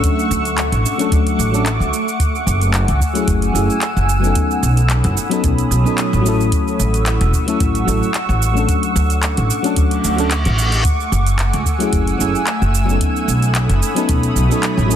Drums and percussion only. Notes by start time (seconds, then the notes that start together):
0.03 kick, closed hi-hat, cabasa
0.19 cabasa
0.31 cabasa
0.45 closed hi-hat, cabasa
0.58 clap, closed hi-hat, cabasa
0.72 closed hi-hat, cabasa
0.86 cabasa
0.99 closed hi-hat, cabasa
1.11 kick, closed hi-hat, cabasa
1.27 closed hi-hat, cabasa
1.40 cabasa
1.54 cabasa
1.66 clap, closed hi-hat, cabasa
1.81 cabasa
1.93 cabasa
2.08 cabasa
2.19 kick, closed hi-hat, cabasa
2.35 cabasa
2.47 cabasa
2.61 closed hi-hat, cabasa
2.74 clap, closed hi-hat, cabasa
2.88 closed hi-hat, cabasa
3.01 kick, cabasa
3.15 closed hi-hat, cabasa
3.28 kick, closed hi-hat, cabasa
3.42 closed hi-hat, cabasa
3.55 cabasa
3.70 cabasa
3.81 clap, closed hi-hat, cabasa
3.97 cabasa
4.09 cabasa
4.24 cabasa
4.35 kick, closed hi-hat, cabasa
4.51 cabasa
4.63 cabasa
4.77 closed hi-hat, cabasa
4.90 clap, closed hi-hat, cabasa
5.04 closed hi-hat, cabasa
5.17 cabasa
5.31 closed hi-hat, cabasa
5.44 kick, closed hi-hat, cabasa
5.58 closed hi-hat, cabasa
5.72 cabasa
5.86 cabasa
5.98 clap, closed hi-hat, cabasa
6.13 cabasa
6.26 cabasa
6.41 cabasa
6.52 kick, closed hi-hat, cabasa
6.68 cabasa
6.80 cabasa
6.94 closed hi-hat, cabasa
7.06 clap, closed hi-hat, cabasa
7.21 closed hi-hat, cabasa
7.33 kick, cabasa
7.48 closed hi-hat, cabasa
7.60 kick, closed hi-hat, cabasa
7.75 closed hi-hat, cabasa
7.88 cabasa
8.03 cabasa
8.14 clap, closed hi-hat, cabasa
8.30 cabasa
8.42 cabasa
8.57 cabasa
8.68 kick, closed hi-hat, cabasa
8.83 closed hi-hat, cabasa
8.96 cabasa
9.10 closed hi-hat, cabasa
9.23 clap, closed hi-hat, cabasa
9.37 closed hi-hat, cabasa
9.50 cabasa
9.64 closed hi-hat, cabasa
9.76 kick, closed hi-hat, cabasa
9.91 closed hi-hat, cabasa
10.04 cabasa
10.18 closed hi-hat, cabasa
10.31 clap, closed hi-hat, cabasa
10.45 closed hi-hat, cabasa
10.59 cabasa
10.72 closed hi-hat, cabasa
10.85 kick, closed hi-hat, cabasa
11.00 cabasa
11.13 cabasa
11.26 closed hi-hat, cabasa
11.39 clap, closed hi-hat, cabasa
11.53 closed hi-hat, cabasa
11.66 kick, cabasa
11.80 closed hi-hat, cabasa
11.93 kick, closed hi-hat, cabasa
12.07 closed hi-hat, cabasa
12.21 cabasa
12.35 cabasa
12.47 clap, closed hi-hat, cabasa
12.62 cabasa
12.75 cabasa
12.89 cabasa
13.01 kick, closed hi-hat, cabasa
13.16 cabasa
13.29 cabasa
13.42 closed hi-hat, cabasa
13.55 clap, closed hi-hat, cabasa
13.70 closed hi-hat, cabasa
13.83 cabasa
13.96 closed hi-hat, cabasa
14.09 kick, closed hi-hat, cabasa
14.23 closed hi-hat, cabasa
14.36 cabasa
14.51 cabasa
14.63 clap, closed hi-hat, cabasa
14.78 cabasa
14.91 cabasa